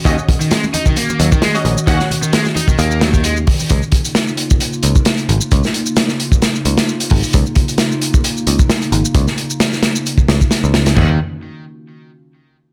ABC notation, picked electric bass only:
X:1
M:4/4
L:1/16
Q:"Swing 16ths" 1/4=132
K:Ebm
V:1 name="Picked electric bass" clef=bass
E,, z8 z E,, z3 B,,, z | E,, z6 z E,,6 z2 | D,, z8 z D,, z3 A,,, z | D,, z8 z D,, z3 A,,, z |
D,, z8 z D,, z3 A,,, z | D,, z8 z D,, z2 D,,3 | E,,2 z12 z2 |]